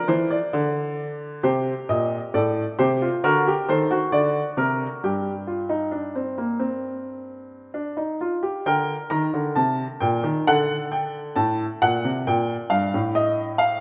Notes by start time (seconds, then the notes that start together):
Already playing: D5
0.08 E3 C5
0.30 D5
0.53 D3
1.43 C3 G4 C5
1.89 A#2 D#5
2.34 A2 A4 D5
2.79 C3 G4 C5
3.02 F4
3.24 D3 F#4 A#4
3.47 G4
3.68 D#3 A4 C5
3.91 F#4
4.12 D3 D5
4.57 C3 A#4
5.03 G2 G4 G5
5.47 F4
5.69 D#4
5.92 D4
6.15 C4
6.38 A#3
6.60 C4
7.74 D4
7.97 D#4
8.21 F4
8.43 G4
8.66 D3 A#4 G5
9.10 D#3 A#5
9.34 D3
9.55 C3 A5
10.01 A#2 G5
10.24 D#3
10.47 D3 A4 F#5
10.92 G5
11.36 A2 A5
11.82 A#2 F#5
12.05 C3
12.27 A#2 G5
12.70 G2 F5
12.94 A2
13.15 D#5
13.58 F5